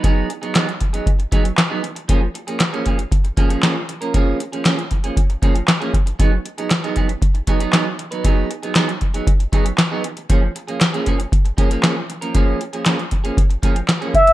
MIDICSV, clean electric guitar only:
0, 0, Header, 1, 3, 480
1, 0, Start_track
1, 0, Tempo, 512821
1, 37, Time_signature, 4, 2, 24, 8
1, 13415, End_track
2, 0, Start_track
2, 0, Title_t, "Clean electric guitar"
2, 0, Program_c, 0, 27
2, 27, Note_on_c, 0, 54, 81
2, 36, Note_on_c, 0, 59, 76
2, 41, Note_on_c, 0, 63, 90
2, 47, Note_on_c, 0, 68, 88
2, 253, Note_off_c, 0, 54, 0
2, 257, Note_off_c, 0, 59, 0
2, 259, Note_off_c, 0, 63, 0
2, 262, Note_off_c, 0, 68, 0
2, 390, Note_on_c, 0, 68, 57
2, 396, Note_on_c, 0, 63, 54
2, 402, Note_on_c, 0, 59, 59
2, 409, Note_on_c, 0, 54, 46
2, 500, Note_off_c, 0, 54, 0
2, 506, Note_off_c, 0, 59, 0
2, 511, Note_on_c, 0, 54, 71
2, 512, Note_off_c, 0, 63, 0
2, 512, Note_off_c, 0, 68, 0
2, 517, Note_on_c, 0, 59, 77
2, 523, Note_on_c, 0, 63, 84
2, 528, Note_on_c, 0, 68, 83
2, 623, Note_off_c, 0, 68, 0
2, 630, Note_off_c, 0, 63, 0
2, 635, Note_off_c, 0, 59, 0
2, 666, Note_off_c, 0, 54, 0
2, 872, Note_on_c, 0, 68, 61
2, 880, Note_on_c, 0, 63, 57
2, 884, Note_on_c, 0, 59, 55
2, 888, Note_on_c, 0, 54, 45
2, 993, Note_off_c, 0, 68, 0
2, 997, Note_off_c, 0, 63, 0
2, 1000, Note_off_c, 0, 59, 0
2, 1002, Note_off_c, 0, 54, 0
2, 1232, Note_on_c, 0, 54, 84
2, 1238, Note_on_c, 0, 59, 80
2, 1242, Note_on_c, 0, 63, 82
2, 1249, Note_on_c, 0, 68, 81
2, 1339, Note_off_c, 0, 68, 0
2, 1346, Note_off_c, 0, 63, 0
2, 1352, Note_off_c, 0, 59, 0
2, 1387, Note_off_c, 0, 54, 0
2, 1589, Note_on_c, 0, 68, 67
2, 1595, Note_on_c, 0, 63, 69
2, 1601, Note_on_c, 0, 59, 68
2, 1605, Note_on_c, 0, 54, 67
2, 1696, Note_off_c, 0, 54, 0
2, 1702, Note_off_c, 0, 59, 0
2, 1707, Note_off_c, 0, 63, 0
2, 1709, Note_off_c, 0, 68, 0
2, 1948, Note_on_c, 0, 53, 77
2, 1957, Note_on_c, 0, 58, 77
2, 1962, Note_on_c, 0, 61, 84
2, 1967, Note_on_c, 0, 68, 89
2, 2062, Note_off_c, 0, 68, 0
2, 2067, Note_off_c, 0, 61, 0
2, 2073, Note_off_c, 0, 58, 0
2, 2105, Note_off_c, 0, 53, 0
2, 2313, Note_on_c, 0, 68, 60
2, 2320, Note_on_c, 0, 61, 46
2, 2324, Note_on_c, 0, 58, 50
2, 2330, Note_on_c, 0, 53, 45
2, 2423, Note_off_c, 0, 53, 0
2, 2428, Note_off_c, 0, 58, 0
2, 2433, Note_off_c, 0, 61, 0
2, 2434, Note_off_c, 0, 68, 0
2, 2552, Note_on_c, 0, 68, 76
2, 2560, Note_on_c, 0, 61, 77
2, 2565, Note_on_c, 0, 58, 68
2, 2569, Note_on_c, 0, 53, 66
2, 2662, Note_off_c, 0, 53, 0
2, 2667, Note_off_c, 0, 58, 0
2, 2673, Note_off_c, 0, 61, 0
2, 2673, Note_on_c, 0, 53, 62
2, 2678, Note_off_c, 0, 68, 0
2, 2679, Note_on_c, 0, 58, 60
2, 2684, Note_on_c, 0, 61, 56
2, 2689, Note_on_c, 0, 68, 67
2, 2780, Note_off_c, 0, 68, 0
2, 2787, Note_off_c, 0, 61, 0
2, 2794, Note_off_c, 0, 53, 0
2, 2794, Note_off_c, 0, 58, 0
2, 3154, Note_on_c, 0, 53, 75
2, 3159, Note_on_c, 0, 58, 80
2, 3166, Note_on_c, 0, 61, 84
2, 3169, Note_on_c, 0, 68, 75
2, 3259, Note_off_c, 0, 68, 0
2, 3268, Note_off_c, 0, 61, 0
2, 3270, Note_on_c, 0, 68, 64
2, 3273, Note_off_c, 0, 58, 0
2, 3276, Note_off_c, 0, 53, 0
2, 3279, Note_on_c, 0, 61, 59
2, 3284, Note_on_c, 0, 58, 53
2, 3288, Note_on_c, 0, 53, 52
2, 3381, Note_off_c, 0, 53, 0
2, 3388, Note_off_c, 0, 58, 0
2, 3391, Note_off_c, 0, 61, 0
2, 3392, Note_on_c, 0, 53, 79
2, 3393, Note_off_c, 0, 68, 0
2, 3399, Note_on_c, 0, 58, 90
2, 3403, Note_on_c, 0, 61, 72
2, 3409, Note_on_c, 0, 68, 90
2, 3502, Note_off_c, 0, 68, 0
2, 3509, Note_off_c, 0, 61, 0
2, 3514, Note_off_c, 0, 58, 0
2, 3547, Note_off_c, 0, 53, 0
2, 3752, Note_on_c, 0, 70, 57
2, 3758, Note_on_c, 0, 61, 55
2, 3762, Note_on_c, 0, 58, 57
2, 3769, Note_on_c, 0, 53, 52
2, 3862, Note_off_c, 0, 53, 0
2, 3869, Note_off_c, 0, 58, 0
2, 3873, Note_off_c, 0, 70, 0
2, 3873, Note_on_c, 0, 53, 82
2, 3874, Note_off_c, 0, 61, 0
2, 3880, Note_on_c, 0, 58, 80
2, 3886, Note_on_c, 0, 61, 79
2, 3889, Note_on_c, 0, 68, 96
2, 4095, Note_off_c, 0, 53, 0
2, 4099, Note_off_c, 0, 58, 0
2, 4102, Note_off_c, 0, 61, 0
2, 4104, Note_off_c, 0, 68, 0
2, 4234, Note_on_c, 0, 68, 55
2, 4241, Note_on_c, 0, 61, 55
2, 4247, Note_on_c, 0, 58, 47
2, 4252, Note_on_c, 0, 53, 47
2, 4341, Note_off_c, 0, 53, 0
2, 4348, Note_off_c, 0, 58, 0
2, 4352, Note_off_c, 0, 61, 0
2, 4352, Note_on_c, 0, 53, 68
2, 4355, Note_off_c, 0, 68, 0
2, 4359, Note_on_c, 0, 58, 74
2, 4363, Note_on_c, 0, 61, 79
2, 4368, Note_on_c, 0, 68, 81
2, 4464, Note_off_c, 0, 68, 0
2, 4469, Note_off_c, 0, 61, 0
2, 4476, Note_off_c, 0, 58, 0
2, 4507, Note_off_c, 0, 53, 0
2, 4716, Note_on_c, 0, 68, 56
2, 4723, Note_on_c, 0, 61, 56
2, 4727, Note_on_c, 0, 58, 50
2, 4733, Note_on_c, 0, 53, 49
2, 4835, Note_off_c, 0, 68, 0
2, 4839, Note_off_c, 0, 61, 0
2, 4841, Note_off_c, 0, 58, 0
2, 4844, Note_off_c, 0, 53, 0
2, 5073, Note_on_c, 0, 53, 70
2, 5080, Note_on_c, 0, 58, 81
2, 5084, Note_on_c, 0, 61, 82
2, 5091, Note_on_c, 0, 68, 83
2, 5183, Note_off_c, 0, 68, 0
2, 5189, Note_off_c, 0, 61, 0
2, 5195, Note_off_c, 0, 58, 0
2, 5227, Note_off_c, 0, 53, 0
2, 5433, Note_on_c, 0, 68, 80
2, 5440, Note_on_c, 0, 61, 75
2, 5446, Note_on_c, 0, 58, 74
2, 5450, Note_on_c, 0, 53, 68
2, 5543, Note_off_c, 0, 53, 0
2, 5547, Note_off_c, 0, 58, 0
2, 5551, Note_off_c, 0, 61, 0
2, 5553, Note_off_c, 0, 68, 0
2, 5793, Note_on_c, 0, 54, 71
2, 5801, Note_on_c, 0, 59, 78
2, 5806, Note_on_c, 0, 63, 85
2, 5810, Note_on_c, 0, 68, 78
2, 5906, Note_off_c, 0, 68, 0
2, 5911, Note_off_c, 0, 63, 0
2, 5919, Note_off_c, 0, 59, 0
2, 5947, Note_off_c, 0, 54, 0
2, 6158, Note_on_c, 0, 68, 54
2, 6164, Note_on_c, 0, 63, 59
2, 6169, Note_on_c, 0, 59, 56
2, 6174, Note_on_c, 0, 54, 45
2, 6267, Note_off_c, 0, 54, 0
2, 6273, Note_off_c, 0, 59, 0
2, 6276, Note_off_c, 0, 63, 0
2, 6276, Note_off_c, 0, 68, 0
2, 6398, Note_on_c, 0, 68, 74
2, 6404, Note_on_c, 0, 63, 74
2, 6409, Note_on_c, 0, 59, 64
2, 6414, Note_on_c, 0, 54, 63
2, 6504, Note_off_c, 0, 54, 0
2, 6509, Note_off_c, 0, 59, 0
2, 6514, Note_off_c, 0, 63, 0
2, 6516, Note_on_c, 0, 54, 54
2, 6519, Note_off_c, 0, 68, 0
2, 6520, Note_on_c, 0, 59, 64
2, 6525, Note_on_c, 0, 63, 64
2, 6530, Note_on_c, 0, 68, 64
2, 6622, Note_off_c, 0, 68, 0
2, 6630, Note_off_c, 0, 63, 0
2, 6635, Note_off_c, 0, 54, 0
2, 6635, Note_off_c, 0, 59, 0
2, 6994, Note_on_c, 0, 54, 78
2, 6999, Note_on_c, 0, 59, 77
2, 7007, Note_on_c, 0, 63, 78
2, 7012, Note_on_c, 0, 68, 87
2, 7103, Note_off_c, 0, 68, 0
2, 7109, Note_off_c, 0, 63, 0
2, 7114, Note_off_c, 0, 59, 0
2, 7115, Note_on_c, 0, 68, 61
2, 7119, Note_off_c, 0, 54, 0
2, 7120, Note_on_c, 0, 63, 57
2, 7125, Note_on_c, 0, 59, 49
2, 7130, Note_on_c, 0, 54, 53
2, 7222, Note_off_c, 0, 54, 0
2, 7230, Note_off_c, 0, 59, 0
2, 7233, Note_on_c, 0, 54, 81
2, 7235, Note_off_c, 0, 63, 0
2, 7235, Note_off_c, 0, 68, 0
2, 7241, Note_on_c, 0, 59, 72
2, 7247, Note_on_c, 0, 63, 83
2, 7250, Note_on_c, 0, 68, 83
2, 7342, Note_off_c, 0, 68, 0
2, 7348, Note_off_c, 0, 63, 0
2, 7354, Note_off_c, 0, 59, 0
2, 7387, Note_off_c, 0, 54, 0
2, 7591, Note_on_c, 0, 71, 65
2, 7599, Note_on_c, 0, 63, 55
2, 7603, Note_on_c, 0, 59, 47
2, 7610, Note_on_c, 0, 54, 50
2, 7698, Note_off_c, 0, 54, 0
2, 7704, Note_off_c, 0, 59, 0
2, 7709, Note_on_c, 0, 54, 75
2, 7710, Note_off_c, 0, 63, 0
2, 7713, Note_off_c, 0, 71, 0
2, 7715, Note_on_c, 0, 59, 81
2, 7721, Note_on_c, 0, 63, 88
2, 7728, Note_on_c, 0, 68, 90
2, 7933, Note_off_c, 0, 54, 0
2, 7937, Note_off_c, 0, 59, 0
2, 7940, Note_off_c, 0, 63, 0
2, 7943, Note_off_c, 0, 68, 0
2, 8074, Note_on_c, 0, 68, 62
2, 8081, Note_on_c, 0, 63, 59
2, 8086, Note_on_c, 0, 59, 53
2, 8091, Note_on_c, 0, 54, 43
2, 8183, Note_off_c, 0, 54, 0
2, 8190, Note_off_c, 0, 59, 0
2, 8194, Note_on_c, 0, 54, 82
2, 8195, Note_off_c, 0, 68, 0
2, 8198, Note_off_c, 0, 63, 0
2, 8201, Note_on_c, 0, 59, 78
2, 8208, Note_on_c, 0, 63, 94
2, 8212, Note_on_c, 0, 68, 84
2, 8306, Note_off_c, 0, 68, 0
2, 8311, Note_off_c, 0, 63, 0
2, 8317, Note_off_c, 0, 59, 0
2, 8348, Note_off_c, 0, 54, 0
2, 8554, Note_on_c, 0, 68, 61
2, 8562, Note_on_c, 0, 63, 57
2, 8566, Note_on_c, 0, 59, 55
2, 8570, Note_on_c, 0, 54, 47
2, 8674, Note_off_c, 0, 68, 0
2, 8679, Note_off_c, 0, 63, 0
2, 8681, Note_off_c, 0, 59, 0
2, 8683, Note_off_c, 0, 54, 0
2, 8914, Note_on_c, 0, 54, 72
2, 8921, Note_on_c, 0, 59, 72
2, 8926, Note_on_c, 0, 63, 79
2, 8931, Note_on_c, 0, 68, 94
2, 9028, Note_off_c, 0, 68, 0
2, 9035, Note_off_c, 0, 63, 0
2, 9041, Note_off_c, 0, 59, 0
2, 9068, Note_off_c, 0, 54, 0
2, 9277, Note_on_c, 0, 68, 67
2, 9282, Note_on_c, 0, 63, 78
2, 9288, Note_on_c, 0, 59, 69
2, 9293, Note_on_c, 0, 54, 66
2, 9386, Note_off_c, 0, 54, 0
2, 9391, Note_off_c, 0, 59, 0
2, 9394, Note_off_c, 0, 63, 0
2, 9397, Note_off_c, 0, 68, 0
2, 9636, Note_on_c, 0, 53, 80
2, 9641, Note_on_c, 0, 58, 74
2, 9649, Note_on_c, 0, 61, 79
2, 9652, Note_on_c, 0, 68, 74
2, 9747, Note_off_c, 0, 68, 0
2, 9755, Note_off_c, 0, 61, 0
2, 9760, Note_off_c, 0, 58, 0
2, 9789, Note_off_c, 0, 53, 0
2, 9992, Note_on_c, 0, 68, 54
2, 9999, Note_on_c, 0, 61, 46
2, 10005, Note_on_c, 0, 58, 53
2, 10011, Note_on_c, 0, 53, 41
2, 10104, Note_off_c, 0, 53, 0
2, 10109, Note_off_c, 0, 58, 0
2, 10113, Note_off_c, 0, 68, 0
2, 10114, Note_off_c, 0, 61, 0
2, 10234, Note_on_c, 0, 68, 84
2, 10240, Note_on_c, 0, 61, 78
2, 10245, Note_on_c, 0, 58, 74
2, 10251, Note_on_c, 0, 53, 60
2, 10344, Note_off_c, 0, 53, 0
2, 10353, Note_off_c, 0, 58, 0
2, 10355, Note_on_c, 0, 53, 55
2, 10357, Note_off_c, 0, 61, 0
2, 10362, Note_off_c, 0, 68, 0
2, 10364, Note_on_c, 0, 58, 59
2, 10368, Note_on_c, 0, 61, 62
2, 10373, Note_on_c, 0, 68, 72
2, 10462, Note_off_c, 0, 68, 0
2, 10470, Note_off_c, 0, 61, 0
2, 10475, Note_off_c, 0, 53, 0
2, 10475, Note_off_c, 0, 58, 0
2, 10830, Note_on_c, 0, 53, 65
2, 10836, Note_on_c, 0, 58, 75
2, 10840, Note_on_c, 0, 61, 84
2, 10847, Note_on_c, 0, 68, 81
2, 10941, Note_off_c, 0, 68, 0
2, 10949, Note_off_c, 0, 61, 0
2, 10953, Note_on_c, 0, 68, 57
2, 10954, Note_off_c, 0, 58, 0
2, 10959, Note_off_c, 0, 53, 0
2, 10960, Note_on_c, 0, 61, 54
2, 10965, Note_on_c, 0, 58, 54
2, 10970, Note_on_c, 0, 53, 53
2, 11061, Note_off_c, 0, 53, 0
2, 11067, Note_off_c, 0, 58, 0
2, 11072, Note_on_c, 0, 53, 79
2, 11074, Note_off_c, 0, 61, 0
2, 11074, Note_off_c, 0, 68, 0
2, 11078, Note_on_c, 0, 58, 84
2, 11085, Note_on_c, 0, 61, 92
2, 11089, Note_on_c, 0, 68, 91
2, 11183, Note_off_c, 0, 68, 0
2, 11189, Note_off_c, 0, 61, 0
2, 11194, Note_off_c, 0, 58, 0
2, 11227, Note_off_c, 0, 53, 0
2, 11432, Note_on_c, 0, 70, 55
2, 11438, Note_on_c, 0, 61, 57
2, 11445, Note_on_c, 0, 58, 53
2, 11450, Note_on_c, 0, 53, 50
2, 11543, Note_off_c, 0, 53, 0
2, 11548, Note_off_c, 0, 58, 0
2, 11553, Note_off_c, 0, 61, 0
2, 11553, Note_off_c, 0, 70, 0
2, 11555, Note_on_c, 0, 53, 91
2, 11559, Note_on_c, 0, 58, 77
2, 11564, Note_on_c, 0, 61, 81
2, 11571, Note_on_c, 0, 68, 86
2, 11776, Note_off_c, 0, 53, 0
2, 11779, Note_off_c, 0, 58, 0
2, 11781, Note_off_c, 0, 61, 0
2, 11784, Note_off_c, 0, 68, 0
2, 11915, Note_on_c, 0, 68, 53
2, 11921, Note_on_c, 0, 61, 48
2, 11927, Note_on_c, 0, 58, 49
2, 11931, Note_on_c, 0, 53, 44
2, 12023, Note_off_c, 0, 53, 0
2, 12029, Note_off_c, 0, 58, 0
2, 12034, Note_off_c, 0, 61, 0
2, 12034, Note_on_c, 0, 53, 88
2, 12035, Note_off_c, 0, 68, 0
2, 12040, Note_on_c, 0, 58, 80
2, 12045, Note_on_c, 0, 61, 85
2, 12050, Note_on_c, 0, 68, 91
2, 12146, Note_off_c, 0, 68, 0
2, 12151, Note_off_c, 0, 61, 0
2, 12157, Note_off_c, 0, 58, 0
2, 12188, Note_off_c, 0, 53, 0
2, 12390, Note_on_c, 0, 68, 64
2, 12397, Note_on_c, 0, 61, 65
2, 12402, Note_on_c, 0, 58, 59
2, 12408, Note_on_c, 0, 53, 48
2, 12512, Note_off_c, 0, 68, 0
2, 12516, Note_off_c, 0, 61, 0
2, 12518, Note_off_c, 0, 58, 0
2, 12521, Note_off_c, 0, 53, 0
2, 12753, Note_on_c, 0, 53, 76
2, 12761, Note_on_c, 0, 58, 83
2, 12765, Note_on_c, 0, 61, 78
2, 12770, Note_on_c, 0, 68, 88
2, 12863, Note_off_c, 0, 68, 0
2, 12869, Note_off_c, 0, 61, 0
2, 12875, Note_off_c, 0, 58, 0
2, 12907, Note_off_c, 0, 53, 0
2, 13114, Note_on_c, 0, 68, 71
2, 13120, Note_on_c, 0, 61, 70
2, 13125, Note_on_c, 0, 58, 68
2, 13130, Note_on_c, 0, 53, 56
2, 13224, Note_off_c, 0, 53, 0
2, 13228, Note_off_c, 0, 58, 0
2, 13231, Note_off_c, 0, 61, 0
2, 13235, Note_off_c, 0, 68, 0
2, 13415, End_track
3, 0, Start_track
3, 0, Title_t, "Muted clean electric guitar strokes"
3, 273, Note_on_c, 9, 29, 36
3, 366, Note_off_c, 9, 29, 0
3, 635, Note_on_c, 9, 29, 52
3, 728, Note_off_c, 9, 29, 0
3, 752, Note_on_c, 9, 29, 41
3, 846, Note_off_c, 9, 29, 0
3, 1111, Note_on_c, 9, 29, 35
3, 1205, Note_off_c, 9, 29, 0
3, 1350, Note_on_c, 9, 29, 39
3, 1444, Note_off_c, 9, 29, 0
3, 1469, Note_on_c, 9, 29, 38
3, 1562, Note_off_c, 9, 29, 0
3, 1707, Note_on_c, 9, 29, 38
3, 1801, Note_off_c, 9, 29, 0
3, 1830, Note_on_c, 9, 29, 51
3, 1923, Note_off_c, 9, 29, 0
3, 2073, Note_on_c, 9, 29, 42
3, 2167, Note_off_c, 9, 29, 0
3, 2195, Note_on_c, 9, 29, 47
3, 2289, Note_off_c, 9, 29, 0
3, 2434, Note_on_c, 9, 29, 39
3, 2527, Note_off_c, 9, 29, 0
3, 2792, Note_on_c, 9, 29, 51
3, 2885, Note_off_c, 9, 29, 0
3, 2914, Note_on_c, 9, 29, 39
3, 3008, Note_off_c, 9, 29, 0
3, 3034, Note_on_c, 9, 29, 44
3, 3128, Note_off_c, 9, 29, 0
3, 3513, Note_on_c, 9, 29, 31
3, 3607, Note_off_c, 9, 29, 0
3, 3635, Note_on_c, 9, 29, 36
3, 3729, Note_off_c, 9, 29, 0
3, 4114, Note_on_c, 9, 29, 37
3, 4207, Note_off_c, 9, 29, 0
3, 4476, Note_on_c, 9, 29, 49
3, 4569, Note_off_c, 9, 29, 0
3, 4599, Note_on_c, 9, 29, 36
3, 4692, Note_off_c, 9, 29, 0
3, 4957, Note_on_c, 9, 29, 41
3, 5051, Note_off_c, 9, 29, 0
3, 5194, Note_on_c, 9, 29, 42
3, 5288, Note_off_c, 9, 29, 0
3, 5315, Note_on_c, 9, 29, 44
3, 5408, Note_off_c, 9, 29, 0
3, 5554, Note_on_c, 9, 29, 42
3, 5648, Note_off_c, 9, 29, 0
3, 5673, Note_on_c, 9, 29, 49
3, 5767, Note_off_c, 9, 29, 0
3, 5917, Note_on_c, 9, 29, 54
3, 6011, Note_off_c, 9, 29, 0
3, 6038, Note_on_c, 9, 29, 35
3, 6131, Note_off_c, 9, 29, 0
3, 6278, Note_on_c, 9, 29, 39
3, 6372, Note_off_c, 9, 29, 0
3, 6634, Note_on_c, 9, 29, 40
3, 6727, Note_off_c, 9, 29, 0
3, 6755, Note_on_c, 9, 29, 38
3, 6849, Note_off_c, 9, 29, 0
3, 6874, Note_on_c, 9, 29, 49
3, 6967, Note_off_c, 9, 29, 0
3, 7353, Note_on_c, 9, 29, 46
3, 7447, Note_off_c, 9, 29, 0
3, 7474, Note_on_c, 9, 29, 41
3, 7567, Note_off_c, 9, 29, 0
3, 7956, Note_on_c, 9, 29, 35
3, 8049, Note_off_c, 9, 29, 0
3, 8318, Note_on_c, 9, 29, 50
3, 8411, Note_off_c, 9, 29, 0
3, 8437, Note_on_c, 9, 29, 44
3, 8530, Note_off_c, 9, 29, 0
3, 8795, Note_on_c, 9, 29, 37
3, 8889, Note_off_c, 9, 29, 0
3, 9039, Note_on_c, 9, 29, 36
3, 9132, Note_off_c, 9, 29, 0
3, 9397, Note_on_c, 9, 29, 38
3, 9491, Note_off_c, 9, 29, 0
3, 9516, Note_on_c, 9, 29, 36
3, 9610, Note_off_c, 9, 29, 0
3, 9758, Note_on_c, 9, 29, 51
3, 9852, Note_off_c, 9, 29, 0
3, 9878, Note_on_c, 9, 29, 45
3, 9972, Note_off_c, 9, 29, 0
3, 10115, Note_on_c, 9, 29, 30
3, 10209, Note_off_c, 9, 29, 0
3, 10473, Note_on_c, 9, 29, 57
3, 10567, Note_off_c, 9, 29, 0
3, 10595, Note_on_c, 9, 29, 34
3, 10688, Note_off_c, 9, 29, 0
3, 10716, Note_on_c, 9, 29, 48
3, 10809, Note_off_c, 9, 29, 0
3, 11194, Note_on_c, 9, 29, 38
3, 11287, Note_off_c, 9, 29, 0
3, 11312, Note_on_c, 9, 29, 42
3, 11406, Note_off_c, 9, 29, 0
3, 11798, Note_on_c, 9, 29, 43
3, 11892, Note_off_c, 9, 29, 0
3, 12157, Note_on_c, 9, 29, 52
3, 12250, Note_off_c, 9, 29, 0
3, 12274, Note_on_c, 9, 29, 52
3, 12368, Note_off_c, 9, 29, 0
3, 12633, Note_on_c, 9, 29, 51
3, 12726, Note_off_c, 9, 29, 0
3, 12874, Note_on_c, 9, 29, 38
3, 12968, Note_off_c, 9, 29, 0
3, 12994, Note_on_c, 9, 29, 44
3, 13087, Note_off_c, 9, 29, 0
3, 13235, Note_on_c, 9, 29, 40
3, 13329, Note_off_c, 9, 29, 0
3, 13354, Note_on_c, 9, 29, 35
3, 13415, Note_off_c, 9, 29, 0
3, 13415, End_track
0, 0, End_of_file